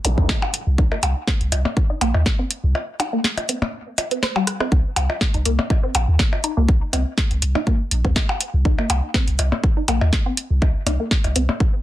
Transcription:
0.05 sub bass A#1, closed hi-hat, zap
0.18 sub bass D#2, synth arpeggio sound C4, kick
0.29 kick, snare, percussion blips
0.42 percussion blips
0.54 closed hi-hat
0.67 sub bass C2
0.78 sub bass C2, synth arpeggio sound D#4, kick
0.91 synth arpeggio sound A#3, percussion blips
1.03 sub bass C2, closed hi-hat, percussion blips
1.27 synth arpeggio sound C4, kick, snare
1.41 sub bass C2, closed hi-hat
1.52 sub bass C2, closed hi-hat, percussion blips
1.65 percussion blips
1.77 kick
1.90 synth arpeggio sound D#4
2.01 sub bass A#1, synth arpeggio sound A#3, closed hi-hat, percussion blips
2.14 sub bass D#2, percussion blips
2.26 kick, snare
2.39 synth arpeggio sound C4
2.51 closed hi-hat
2.64 sub bass C2
2.75 percussion blips
3.00 synth arpeggio sound D#4, closed hi-hat, percussion blips
3.13 synth arpeggio sound A#3
3.24 snare
3.38 closed hi-hat, percussion blips
3.49 synth arpeggio sound C4, closed hi-hat
3.62 percussion blips
3.98 closed hi-hat, percussion blips
4.11 synth arpeggio sound C4, closed hi-hat
4.23 synth arpeggio sound C5, snare
4.36 synth arpeggio sound G3, percussion blips
4.47 cross-stick, closed hi-hat
4.60 synth arpeggio sound C4, cross-stick, percussion blips
4.72 sub bass C2, synth arpeggio sound C4, kick
4.96 sub bass C2, closed hi-hat, percussion blips
5.10 percussion blips
5.21 kick, snare
5.34 sub bass C2, synth arpeggio sound D#4, closed hi-hat
5.45 sub bass C2, synth arpeggio sound A#3, closed hi-hat
5.59 percussion blips
5.70 kick, percussion blips
5.83 synth arpeggio sound C4
5.95 sub bass A#1, closed hi-hat, percussion blips
6.08 sub bass D#2
6.19 kick, snare
6.33 percussion blips
6.44 synth arpeggio sound D#4, closed hi-hat
6.57 sub bass C2, synth arpeggio sound A#3
6.69 sub bass C2, kick
6.93 sub bass C2, synth arpeggio sound C4, closed hi-hat, percussion blips
7.18 kick, snare
7.31 sub bass C2, closed hi-hat
7.42 sub bass C2, closed hi-hat
7.55 synth arpeggio sound D#4, percussion blips
7.67 synth arpeggio sound A#3, kick
7.91 sub bass A#1, closed hi-hat
8.05 sub bass D#2, synth arpeggio sound C4, kick
8.16 kick, snare, percussion blips
8.29 percussion blips
8.41 closed hi-hat
8.54 sub bass C2
8.65 sub bass C2, synth arpeggio sound D#4, kick
8.78 synth arpeggio sound A#3, percussion blips
8.90 sub bass C2, closed hi-hat, percussion blips
9.14 synth arpeggio sound C4, kick, snare
9.27 sub bass C2, closed hi-hat
9.39 sub bass C2, closed hi-hat, percussion blips
9.52 percussion blips
9.64 kick
9.77 synth arpeggio sound D#4
9.88 sub bass A#1, synth arpeggio sound A#3, closed hi-hat, percussion blips
10.01 sub bass D#2, percussion blips
10.13 kick, snare
10.26 synth arpeggio sound C4
10.37 closed hi-hat
10.50 sub bass C2
10.62 sub bass C2, kick, percussion blips
10.86 sub bass C2, synth arpeggio sound D#4, closed hi-hat, percussion blips
11.00 synth arpeggio sound A#3
11.11 kick, snare
11.24 sub bass C2, closed hi-hat, percussion blips
11.36 sub bass C2, synth arpeggio sound C4, closed hi-hat
11.49 percussion blips
11.60 kick

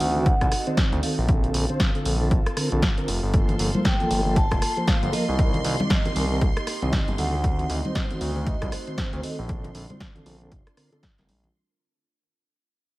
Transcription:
Already playing: tonewheel organ D#3 C4 F#4, analog synth pad C4 D#4 F#4 A4, vibraphone F#5
0.00 analog synth bass D2, open hi-hat
0.16 tonewheel organ D#3 C4 F#4
0.26 vibraphone F#5, kick, closed hi-hat
0.41 analog synth bass C2, kick, cross-stick, closed hi-hat
0.52 cross-stick, open hi-hat
0.59 vibraphone D#5
0.67 tonewheel organ D#3 C4 C5, vibraphone D5, closed hi-hat
0.77 kick, snare, closed hi-hat
0.93 analog synth bass D2, closed hi-hat
1.03 tonewheel organ D#3 C4 A4, vibraphone F5, open hi-hat
1.18 analog synth bass A#1
1.28 tonewheel organ D3 C4 A4, analog synth pad F4 A4, kick, closed hi-hat
1.44 closed hi-hat
1.54 analog synth bass A#1, open hi-hat
1.69 tonewheel organ D3 C4 C5, closed hi-hat
1.80 kick, snare, closed hi-hat
1.95 tonewheel organ D3 C4 A4, closed hi-hat
2.05 analog synth bass A#1, open hi-hat
2.21 tonewheel organ D3 C4 A4
2.31 kick, closed hi-hat
2.46 cross-stick, closed hi-hat
2.57 tonewheel organ D3 C4 A#4, cross-stick, open hi-hat
2.72 analog synth bass A#1, tonewheel organ D3 C4 A4, closed hi-hat
2.82 kick, snare, closed hi-hat
2.98 tonewheel organ D3 C4 A#4, closed hi-hat
3.08 analog synth bass F1, open hi-hat
3.23 analog synth bass G1
3.34 tonewheel organ F3 A#3 A4, analog synth pad A#3, string machine C6, kick, closed hi-hat
3.49 closed hi-hat, high bongo, low conga
3.59 analog synth bass G1, open hi-hat
3.75 tonewheel organ F3 A#3 C5, closed hi-hat, high conga
3.85 vibraphone G5, kick, snare, closed hi-hat, high bongo
4.00 tonewheel organ F3 A#3 A4, closed hi-hat, low conga
4.11 analog synth bass G1, open hi-hat, high bongo
4.26 tonewheel organ F3 A#3 A4
4.36 vibraphone A5, kick, closed hi-hat
4.51 analog synth bass F1, kick, cross-stick, closed hi-hat, high bongo
4.62 cross-stick, open hi-hat
4.77 tonewheel organ F3 A#3 C5, closed hi-hat, high bongo
4.87 vibraphone F5, kick, snare, closed hi-hat
5.03 analog synth bass G1, closed hi-hat
5.12 tonewheel organ F3 A#3 A#4, vibraphone D#5, open hi-hat, high bongo
5.28 analog synth bass C2
5.39 tonewheel organ D#3 C4 A#4, analog synth pad A#3 D#4 G4, kick, closed hi-hat, high bongo
5.54 closed hi-hat, low conga
5.64 analog synth bass C2, open hi-hat
5.80 tonewheel organ D#3 C4 D5, closed hi-hat, high bongo, high conga
5.90 kick, snare, closed hi-hat
6.05 tonewheel organ D#3 C4 A#4, closed hi-hat, high bongo, low conga
6.16 analog synth bass C2, open hi-hat
6.31 tonewheel organ D#3 C4 A#4
6.41 kick, closed hi-hat, high bongo
6.57 cross-stick, closed hi-hat
6.67 cross-stick, open hi-hat, high bongo
6.82 analog synth bass C2, tonewheel organ D#3 C4 D#5, closed hi-hat
6.93 kick, snare, closed hi-hat
7.08 analog synth bass G1, closed hi-hat, high bongo, high conga
7.18 analog synth bass D2, tonewheel organ D#3 C4 A4, analog synth pad A3 C4 F#4, vibraphone F#5, open hi-hat
7.34 high bongo
7.44 tonewheel organ D#3 C4 F#4, kick, closed hi-hat
7.59 closed hi-hat, low conga
7.70 analog synth bass D2, vibraphone D#5, open hi-hat, high bongo
7.85 tonewheel organ D#3 C4 C5, closed hi-hat, high conga
7.95 vibraphone C5, kick, snare, closed hi-hat, high bongo
8.10 tonewheel organ D#3 C4 F#4, closed hi-hat, low conga
8.21 analog synth bass D2, vibraphone D5, open hi-hat
8.36 tonewheel organ D#3 C4 F#4, high bongo
8.47 vibraphone D#5, kick, closed hi-hat
8.61 analog synth bass C2, kick, cross-stick, closed hi-hat, high bongo
8.72 vibraphone C5, cross-stick, open hi-hat
8.87 tonewheel organ D#3 C4 C5, closed hi-hat
8.98 kick, snare, closed hi-hat, high bongo
9.13 analog synth bass D2, closed hi-hat
9.23 tonewheel organ D#3 C4 A4, vibraphone D#5, open hi-hat, high bongo
9.39 analog synth bass A#1
9.49 tonewheel organ D3 C4 A4, analog synth pad D4 F4, vibraphone D5, kick, closed hi-hat
9.64 closed hi-hat, high bongo, low conga
9.75 analog synth bass A#1, open hi-hat
9.90 tonewheel organ D3 C4 C5, closed hi-hat, high bongo, high conga
10.00 kick, snare, closed hi-hat
10.15 tonewheel organ D3 C4 A4, closed hi-hat, low conga
10.26 analog synth bass A#1, open hi-hat, high bongo
10.41 tonewheel organ D3 C4 A4, closed hi-hat
10.52 analog synth bass F1, kick, closed hi-hat, high bongo
10.67 cross-stick, closed hi-hat
10.77 tonewheel organ D3 C4 A#4, cross-stick, open hi-hat
10.92 tonewheel organ D3 C4 A4, closed hi-hat, high bongo
11.03 kick, snare, closed hi-hat
11.18 analog synth bass F1, tonewheel organ D3 C4 A#4, snare, closed hi-hat, high bongo, high conga
11.29 analog synth bass A#1, open hi-hat, high conga
11.44 closed hi-hat, low conga

